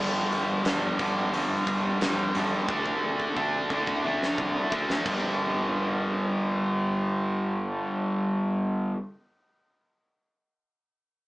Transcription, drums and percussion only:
0.32 open hi-hat
0.65 snare, open hi-hat
0.99 kick, open hi-hat
1.34 open hi-hat
1.67 kick, open hi-hat
2.01 snare, open hi-hat
2.35 open hi-hat
2.69 kick
2.86 kick
3.20 kick
3.37 kick
3.70 kick
3.87 kick
4.23 snare
4.38 kick
4.72 kick
4.90 snare
5.06 kick, crash

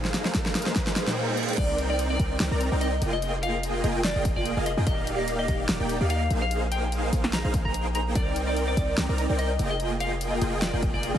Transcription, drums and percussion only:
0.05 snare
0.14 snare, closed hi-hat
0.25 snare
0.35 kick, snare, closed hi-hat
0.46 snare
0.55 snare, closed hi-hat
0.59 closed hi-hat
0.62 closed hi-hat
0.66 snare
0.76 kick, snare, closed hi-hat
0.87 snare
0.96 snare, closed hi-hat
1.07 snare
1.37 closed hi-hat
1.43 closed hi-hat
1.49 closed hi-hat
1.53 closed hi-hat
1.58 kick, closed hi-hat, crash
1.78 closed hi-hat
1.99 closed hi-hat
2.20 kick, closed hi-hat
2.40 snare, closed hi-hat
2.61 closed hi-hat
2.81 closed hi-hat
3.02 closed hi-hat
3.22 closed hi-hat
3.43 closed hi-hat
3.63 closed hi-hat
3.84 closed hi-hat
4.04 snare, closed hi-hat
4.25 kick, closed hi-hat
4.46 closed hi-hat
4.66 closed hi-hat
4.87 kick, closed hi-hat
5.07 closed hi-hat
5.28 closed hi-hat
5.48 kick, closed hi-hat
5.69 snare, closed hi-hat
5.89 closed hi-hat
6.10 closed hi-hat
6.31 closed hi-hat
6.51 closed hi-hat
6.72 closed hi-hat
6.92 closed hi-hat
7.13 kick, closed hi-hat
7.24 snare
7.33 snare, closed hi-hat
7.54 kick, closed hi-hat
7.74 closed hi-hat
7.95 closed hi-hat
8.15 kick, closed hi-hat
8.36 closed hi-hat
8.57 closed hi-hat
8.77 kick, closed hi-hat
8.98 snare, closed hi-hat
9.18 closed hi-hat
9.39 closed hi-hat
9.59 closed hi-hat
9.80 closed hi-hat
10.00 closed hi-hat
10.21 closed hi-hat
10.42 closed hi-hat
10.62 snare, closed hi-hat
10.83 kick, closed hi-hat
11.03 closed hi-hat

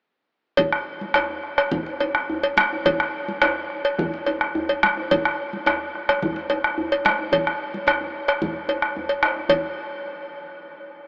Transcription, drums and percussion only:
0.57 bombo rim, bombo low, cowbell, high conga, djembe bass, low conga
0.72 bombo rim
1.01 high conga
1.14 bombo rim, cowbell, djembe slap, djembe bass
1.30 djembe tone
1.43 bombo rim
1.58 bombo rim, cowbell, high conga
1.72 bombo rim, bombo low, high conga, low conga, djembe bass
1.86 djembe slap
2.00 bombo rim, cowbell, djembe tone
2.15 bombo rim
2.30 djembe bass
2.43 cowbell, high conga
2.57 bombo rim, high conga
2.73 djembe tone
2.85 bombo rim, bombo low, cowbell, high conga, low conga, djembe bass
3.00 bombo rim
3.28 high conga
3.42 bombo rim, cowbell, djembe slap, djembe bass
3.70 bombo rim
3.85 cowbell
3.98 bombo rim, bombo low, high conga, djembe bass, low conga
4.14 djembe slap
4.26 bombo rim, cowbell, djembe tone
4.41 bombo rim
4.55 djembe bass
4.69 cowbell, high conga
4.83 bombo rim, high conga
4.97 djembe tone
5.11 bombo rim, bombo low, cowbell, high conga, djembe bass, low conga
5.25 bombo rim
5.53 high conga
5.66 bombo rim, cowbell, djembe slap, djembe bass
5.95 bombo rim
6.09 bombo rim, cowbell, high conga
6.22 bombo rim, bombo low, high conga, djembe bass, low conga
6.36 djembe slap
6.50 bombo rim, cowbell, djembe tone
6.64 bombo rim
6.78 djembe bass
6.92 cowbell, high conga
7.05 bombo rim, djembe slap, high conga
7.19 djembe tone
7.32 bombo low, cowbell, djembe bass, low conga
7.47 bombo rim
7.74 high conga
7.87 bombo rim, cowbell, djembe slap, djembe bass
8.01 djembe slap, djembe tone
8.28 bombo rim, cowbell
8.42 bombo low, high conga, djembe bass, low conga
8.69 bombo rim, cowbell, djembe tone
8.82 bombo rim
8.96 djembe slap, high conga, djembe bass
9.09 cowbell
9.23 bombo rim, djembe slap
9.36 djembe slap, djembe tone
9.49 bombo low, cowbell, djembe bass, low conga

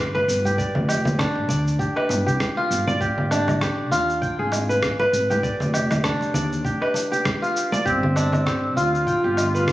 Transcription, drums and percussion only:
0.15 muted conga
0.29 cabasa
0.45 high conga, cabasa
0.58 kick, cabasa
0.75 low conga
0.89 cabasa, low woodblock
1.05 high conga, low conga, cabasa
1.19 kick, cross-stick, cabasa
1.36 muted conga
1.49 muted conga, cabasa
1.67 cabasa
1.79 kick, cabasa
1.97 low woodblock
2.09 muted conga, high conga, cabasa
2.28 cabasa
2.40 kick, cross-stick, high conga, cabasa
2.71 cabasa
2.87 muted conga, high conga, cabasa
3.01 kick, cabasa
3.18 low conga
3.31 cabasa, low woodblock
3.48 high conga, low conga, cabasa, low woodblock
3.61 kick, cross-stick, cabasa
3.92 cabasa
4.10 cabasa
4.22 kick, cabasa
4.52 muted conga, cabasa, low woodblock
4.70 cabasa
4.83 kick, cross-stick, cabasa
5.00 muted conga
5.14 cabasa
5.31 high conga, cabasa
5.43 kick, cabasa
5.60 low conga, cabasa
5.74 cabasa, low woodblock
5.91 cross-stick, high conga, low conga, cabasa, low woodblock
6.04 kick, cross-stick, cabasa
6.21 muted conga, cabasa
6.34 muted conga, low conga, cabasa
6.52 cabasa
6.65 kick, cabasa
6.82 low woodblock
6.94 muted conga, high conga, cabasa
7.13 cabasa
7.25 kick, cross-stick, high conga, cabasa
7.44 cabasa
7.57 cabasa
7.72 muted conga, high conga, cabasa
7.86 kick, cabasa
8.03 low conga
8.16 cabasa, low woodblock
8.32 high conga, low conga, cabasa, low woodblock
8.46 kick, cross-stick, cabasa
8.78 cabasa
8.95 cabasa
9.07 kick, cabasa
9.37 muted conga, cabasa, low woodblock
9.55 cabasa
9.68 kick, cross-stick, cabasa

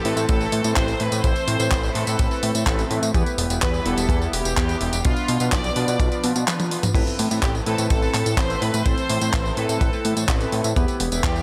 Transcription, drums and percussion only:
0.05 open hi-hat
0.17 closed hi-hat, tambourine
0.29 kick, closed hi-hat, tambourine
0.41 tambourine
0.52 open hi-hat
0.64 closed hi-hat, tambourine
0.76 kick, clap, closed hi-hat, tambourine
0.88 closed hi-hat, tambourine
1.00 open hi-hat
1.12 closed hi-hat, tambourine
1.24 kick, closed hi-hat, tambourine
1.36 closed hi-hat, tambourine
1.48 open hi-hat
1.60 closed hi-hat, tambourine
1.71 kick, clap, closed hi-hat, tambourine
1.83 tambourine
1.95 open hi-hat
2.07 closed hi-hat, tambourine
2.19 kick, closed hi-hat, tambourine
2.31 tambourine
2.43 open hi-hat
2.55 closed hi-hat, tambourine
2.66 kick, clap, closed hi-hat
2.79 closed hi-hat, tambourine
2.91 open hi-hat
3.03 closed hi-hat, tambourine
3.14 kick, closed hi-hat, tambourine
3.26 closed hi-hat, tambourine
3.38 open hi-hat
3.50 closed hi-hat, tambourine
3.62 kick, clap, closed hi-hat
3.74 tambourine
3.86 open hi-hat
3.98 closed hi-hat, tambourine
4.09 kick, closed hi-hat, tambourine
4.21 tambourine
4.33 open hi-hat
4.45 closed hi-hat, tambourine
4.57 kick, clap, closed hi-hat
4.69 closed hi-hat, tambourine
4.81 open hi-hat
4.93 closed hi-hat, tambourine
5.05 kick, closed hi-hat, tambourine
5.17 closed hi-hat, tambourine
5.28 open hi-hat
5.40 closed hi-hat, tambourine
5.52 kick, clap, closed hi-hat, tambourine
5.64 closed hi-hat, tambourine
5.76 open hi-hat
5.88 closed hi-hat, tambourine
6.00 kick, closed hi-hat, tambourine
6.12 closed hi-hat, tambourine
6.24 open hi-hat
6.36 closed hi-hat, tambourine
6.48 clap, closed hi-hat, high tom, tambourine
6.60 closed hi-hat, high tom, tambourine
6.71 open hi-hat
6.83 closed hi-hat, mid tom, tambourine
6.94 kick, closed hi-hat, tambourine, crash
7.07 closed hi-hat, tambourine
7.19 open hi-hat
7.31 closed hi-hat, tambourine
7.43 kick, clap, closed hi-hat, tambourine
7.55 tambourine
7.66 open hi-hat
7.78 closed hi-hat, tambourine
7.90 kick, closed hi-hat, tambourine
8.02 tambourine
8.14 clap, open hi-hat
8.26 closed hi-hat, tambourine
8.37 kick, clap, closed hi-hat, tambourine
8.50 closed hi-hat, tambourine
8.62 open hi-hat
8.74 closed hi-hat, tambourine
8.86 kick, closed hi-hat, tambourine
8.98 closed hi-hat, tambourine
9.10 open hi-hat
9.21 closed hi-hat, tambourine
9.33 kick, clap, closed hi-hat
9.45 tambourine
9.57 open hi-hat
9.69 closed hi-hat, tambourine
9.81 kick, closed hi-hat, tambourine
9.93 tambourine
10.05 open hi-hat
10.17 closed hi-hat, tambourine
10.28 kick, clap, closed hi-hat
10.41 closed hi-hat, tambourine
10.52 open hi-hat
10.64 closed hi-hat, tambourine
10.76 kick, closed hi-hat, tambourine
10.88 closed hi-hat, tambourine
11.00 open hi-hat
11.12 closed hi-hat, tambourine
11.24 kick, clap, closed hi-hat
11.36 tambourine

